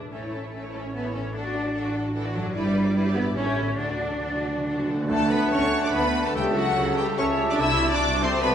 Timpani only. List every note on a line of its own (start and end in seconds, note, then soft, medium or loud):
3.79 3.85 D3 soft
3.86 3.91 D3 soft
3.93 4.00 D3 soft
4.01 4.07 D3 soft
4.08 4.15 D3 soft
4.18 4.24 D3 soft
4.25 4.32 D3 soft
4.33 4.39 D3 soft
4.40 4.47 D3 soft
4.48 4.55 D3 medium
4.56 4.62 D3 medium
4.64 4.70 D3 medium
4.71 4.78 D3 medium
4.79 4.85 D3 medium
4.86 4.93 D3 medium
4.94 5.01 D3 medium
5.02 5.07 D3 medium
5.08 5.68 D3 loud